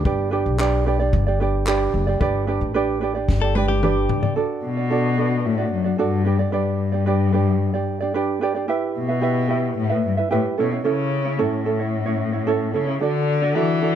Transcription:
0.05 G1 D4 G4 B4 D5, kick
0.31 D4 G4 B4 D5
0.46 B1
0.59 D4 G4 B4 D5, clap
0.86 D4 G4 B4 D5
1.00 D4 G4 D5
1.13 G1, kick
1.27 D4 G4 D5
1.40 D4 G4 B4 D5
1.67 D4 G4 B4 D5, clap
1.94 F#1
2.07 D4 G4 D5
2.20 G1 D4 G4 B4 D5, kick
2.47 D4 G4 B4 D5
2.61 A1
2.74 D4 G4 B4 D5
3.01 D4 G4 B4 D5
3.15 D4 G4 D5
3.29 G1, kick, snare
3.41 D4 G4 A4 D5
3.55 D4 G4 B4 D5, high tom
3.68 G4, high tom
3.83 D4 G4 B4 D5, mid tom
4.09 C#2, floor tom
4.23 D4 G4 D5, floor tom
4.36 D4 F#4 A4 D5
4.65 B2
4.77 D4 F#4 D5
4.90 D4 F#4 A4 D5
5.18 D4 F#4 A4 D5
5.45 A2
5.58 D4 F#4 D5
5.73 F#2
5.84 D4 F#4 D5
5.98 G2 D4 F#4 A4 D5
6.25 D4 G4 B4 D5
6.39 D4 G4 D5
6.52 G2 D4 G4 B4 D5
6.92 D4 G4 D5
7.06 D4 G4 B4 D5
7.32 D4 G4 B4 D5
7.74 D4 G4 D5
8.01 D4 G4 D5
8.14 D4 G4 B4 D5
8.41 D4 G4 B4 D5
8.55 D4 G4 D5
8.68 E4 G4 B4 E5
8.98 B2
9.08 E4 B4 E5
9.21 E4 G4 B4 E5
9.48 E4 G4 B4 E5
9.78 A2
9.89 E4 B4 E5
10.05 G2
10.17 E4 B4 E5
10.31 A2 E4 G4 B4 E5
10.58 B2 C#4 E4 A4 C#5
10.71 C#4 E4 C#5
10.84 C#3 C#4 E4 A4 C#5
11.25 C#4 E4 C#5
11.39 A2 C#4 E4 A4 C#5
11.66 C#4 E4 A4 C#5
11.79 C#4 E4 C#5
12.06 C#4 E4 C#5
12.32 C#4 E4 C#5
12.47 C#4 E4 A4 C#5
12.73 C#3 C#4 E4 A4 C#5
12.87 C#4 E4 C#5
13.01 D3 D4 F#4 A4 D5
13.42 D4 F#4 D5
13.55 E3 D4 F#4 A4 D5
13.81 D4 F#4 A4 D5

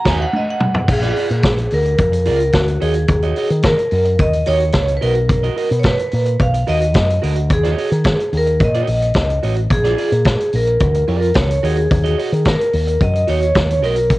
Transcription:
0.05 D#2 F#4 C#5 D#5 G#5, kick, snare, crash
0.22 F#5
0.33 D#5, high tom
0.50 F#5
0.60 mid tom
0.74 floor tom
0.88 A#1 G#4, muted clean electric guitar stroke, kick, crash
1.03 F4 G#4 D5, snare, closed hi-hat
1.16 F4 G#4 D5, open hi-hat
1.30 A#2, muted clean electric guitar stroke, closed hi-hat
1.43 A#1, muted clean electric guitar stroke, kick, snare, closed hi-hat
1.58 muted clean electric guitar stroke, closed hi-hat
1.71 D2 A#4, open hi-hat
1.85 muted clean electric guitar stroke, closed hi-hat
1.98 F2, kick, closed hi-hat
2.12 muted clean electric guitar stroke, closed hi-hat
2.26 C#2 F4 G#4 D5, open hi-hat
2.36 A#4, muted clean electric guitar stroke, closed hi-hat
2.53 D2 F#4, kick, snare, closed hi-hat
2.67 muted clean electric guitar stroke, closed hi-hat
2.80 D#2 F#4 G#4 C#5 D#5, open hi-hat
2.94 muted clean electric guitar stroke, closed hi-hat
3.08 D#2, muted clean electric guitar stroke, kick, closed hi-hat
3.22 F#4 C#5 D#5, closed hi-hat
3.36 F#4 C#5 D#5, open hi-hat
3.50 D#3, muted clean electric guitar stroke, closed hi-hat
3.63 A#4, muted clean electric guitar stroke, kick, snare, closed hi-hat
3.77 muted clean electric guitar stroke, closed hi-hat
3.91 F#2, open hi-hat
4.05 muted clean electric guitar stroke, closed hi-hat
4.19 D#2 D#5, kick, closed hi-hat
4.33 muted clean electric guitar stroke, closed hi-hat
4.46 D#2 F#4 C#5 D#5, open hi-hat
4.60 muted clean electric guitar stroke, closed hi-hat
4.72 C#2, kick, snare, closed hi-hat
4.88 muted clean electric guitar stroke, closed hi-hat
4.97 B4
5.01 B1 F#4 A#4 D#5, open hi-hat
5.15 muted clean electric guitar stroke, closed hi-hat
5.29 muted clean electric guitar stroke, kick, closed hi-hat
5.43 F#4 A#4 D#5, closed hi-hat
5.57 F#4 A#4 D#5, open hi-hat
5.70 B2, muted clean electric guitar stroke, closed hi-hat
5.79 C#5, closed hi-hat
5.84 B4, kick, snare
5.98 muted clean electric guitar stroke, closed hi-hat
6.12 A#2, open hi-hat
6.26 muted clean electric guitar stroke, closed hi-hat
6.39 B1 F5, kick, closed hi-hat
6.54 muted clean electric guitar stroke, closed hi-hat
6.67 D#2 F#4 A#4 D#5, open hi-hat
6.81 muted clean electric guitar stroke, closed hi-hat
6.94 F#2, kick, snare, closed hi-hat
7.09 muted clean electric guitar stroke, closed hi-hat
7.22 D2 F#4 A#4 D#5, open hi-hat
7.36 muted clean electric guitar stroke, closed hi-hat
7.50 D#2 G#4, muted clean electric guitar stroke, kick, closed hi-hat
7.63 F#4 C#5 D#5, snare, closed hi-hat
7.78 F#4 C#5 D#5, open hi-hat
7.91 D#3, muted clean electric guitar stroke, closed hi-hat
8.04 muted clean electric guitar stroke, kick, snare, closed hi-hat
8.19 muted clean electric guitar stroke, closed hi-hat
8.33 D#2, open hi-hat
8.37 A#4
8.47 muted clean electric guitar stroke, closed hi-hat
8.60 A#2, muted clean electric guitar stroke, kick, closed hi-hat
8.64 D#5
8.75 F#4 C#5 D#5, closed hi-hat
8.87 A#1, muted clean electric guitar stroke, open hi-hat
9.02 muted clean electric guitar stroke, closed hi-hat
9.14 C#2, kick, snare, closed hi-hat
9.30 muted clean electric guitar stroke, closed hi-hat
9.43 A1 F#4 C#5 D#5, open hi-hat
9.56 muted clean electric guitar stroke, closed hi-hat
9.70 A#1 G#4, muted clean electric guitar stroke, kick, closed hi-hat
9.84 F4 G#4 D5, snare, closed hi-hat
9.97 F4 G#4 D5, open hi-hat
10.12 A#2, muted clean electric guitar stroke, closed hi-hat
10.25 muted clean electric guitar stroke, kick, snare, closed hi-hat
10.40 muted clean electric guitar stroke, closed hi-hat
10.53 A#1 A#4, open hi-hat
10.67 muted clean electric guitar stroke, closed hi-hat
10.80 D2, kick, closed hi-hat
10.94 muted clean electric guitar stroke, closed hi-hat
11.08 F2 F4 G#4 D5, open hi-hat
11.20 A#4, muted clean electric guitar stroke, closed hi-hat
11.34 C#2 C#5, kick, snare, closed hi-hat
11.49 muted clean electric guitar stroke, closed hi-hat
11.63 D#2 F#4 G#4 C#5 D#5, open hi-hat
11.77 muted clean electric guitar stroke, closed hi-hat
11.91 D#2, muted clean electric guitar stroke, kick, closed hi-hat
12.04 F#4 C#5 D#5, closed hi-hat
12.18 F#4 C#5 D#5, open hi-hat
12.32 D#3, muted clean electric guitar stroke, closed hi-hat
12.45 A#4, muted clean electric guitar stroke, kick, snare, closed hi-hat
12.59 muted clean electric guitar stroke, closed hi-hat
12.73 D#2, open hi-hat
12.87 muted clean electric guitar stroke, closed hi-hat
13.01 F#2 D#5, kick, closed hi-hat
13.14 muted clean electric guitar stroke, closed hi-hat
13.27 D#2 F#4 C#5 D#5, open hi-hat
13.42 muted clean electric guitar stroke, closed hi-hat
13.55 D#2, kick, snare, closed hi-hat
13.69 muted clean electric guitar stroke, closed hi-hat
13.82 B1 F#4 A#4 D#5, open hi-hat
13.96 muted clean electric guitar stroke, closed hi-hat
14.10 muted clean electric guitar stroke, kick, closed hi-hat

